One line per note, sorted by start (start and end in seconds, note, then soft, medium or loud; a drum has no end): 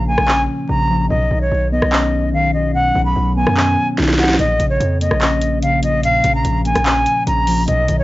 0.00 0.17 A#1 loud
0.00 0.49 A#2 loud
0.00 0.69 C#3 medium
0.00 0.28 F3 medium
0.00 0.08 A#3 medium
0.00 0.28 C#4 medium
0.08 1.10 A#3 medium
0.08 0.42 G#5 medium
0.18 0.47 A#1 loud
0.18 cross-stick loud
0.28 1.10 C#4 loud
0.28 clap loud
0.69 1.09 A#1 loud
0.69 1.10 C#3 medium
0.69 1.08 A#5 medium
0.90 1.10 F3 medium
1.10 1.30 B1 loud
1.10 2.13 B2 medium
1.10 1.39 D#5 medium
1.31 1.51 B1 loud
1.31 2.32 D#3 medium
1.41 1.70 C#5 medium
1.51 1.81 B1 loud
1.72 2.75 B3 medium
1.72 2.30 D#5 medium
1.82 2.91 B1 loud
1.82 cross-stick loud
1.92 2.95 C#4 loud
1.92 clap loud
2.34 2.94 D#3 medium
2.34 2.51 F5 medium
2.54 3.57 F#3 medium
2.54 2.72 D#5 medium
2.74 3.78 B2 medium
2.74 3.04 F#5 loud
2.95 3.15 B1 loud
2.95 3.97 D#3 medium
3.05 3.34 B5 medium
3.16 3.45 B1 loud
3.36 4.39 B3 medium
3.36 3.88 G#5 medium
3.47 3.76 F#2 loud
3.47 cross-stick loud
3.57 4.39 C#4 loud
3.57 clap loud
3.98 4.38 B1 loud
3.98 4.39 D#3 medium
3.98 snare medium
4.03 snare medium
4.08 snare medium
4.13 snare medium
4.18 4.39 F#3 medium
4.18 4.36 F#5 medium
4.18 snare medium
4.24 snare medium
4.29 snare loud
4.34 snare medium
4.39 4.59 A#1 loud
4.39 5.42 A#2 loud
4.39 4.68 D#5 loud
4.39 closed hi-hat medium
4.60 4.79 A#1 loud
4.60 5.61 C#3 medium
4.60 closed hi-hat medium
4.70 4.99 C#5 medium
4.80 5.10 F2 loud
4.80 closed hi-hat medium
5.01 6.04 A#3 medium
5.01 5.59 D#5 medium
5.01 closed hi-hat medium
5.11 6.20 A#1 loud
5.11 cross-stick loud
5.21 6.24 C#4 medium
5.21 clap loud
5.21 closed hi-hat medium
5.41 closed hi-hat medium
5.63 6.23 C#3 medium
5.63 5.80 F5 medium
5.63 closed hi-hat medium
5.83 6.86 F3 medium
5.83 6.01 D#5 medium
5.83 closed hi-hat medium
6.03 7.06 A#2 loud
6.03 6.33 F5 loud
6.03 closed hi-hat medium
6.24 6.44 A#1 loud
6.24 7.26 C#3 medium
6.24 closed hi-hat medium
6.35 6.64 A#5 medium
6.45 6.74 A#1 loud
6.45 closed hi-hat medium
6.65 7.68 A#3 medium
6.65 7.23 G#5 medium
6.65 closed hi-hat soft
6.75 7.05 A#1 loud
6.75 cross-stick loud
6.75 closed hi-hat medium
6.86 7.68 C#4 medium
6.86 clap loud
6.86 closed hi-hat medium
7.06 closed hi-hat medium
7.27 7.66 A#1 loud
7.27 7.68 C#3 medium
7.27 7.66 A#5 medium
7.27 closed hi-hat medium
7.47 7.68 F3 medium
7.47 open hi-hat medium
7.67 7.88 B1 loud
7.67 8.04 B2 medium
7.67 7.97 D#5 loud
7.67 closed hi-hat medium
7.88 8.04 B1 loud
7.88 8.04 D#3 medium
7.88 closed hi-hat medium
7.99 8.04 C#5 medium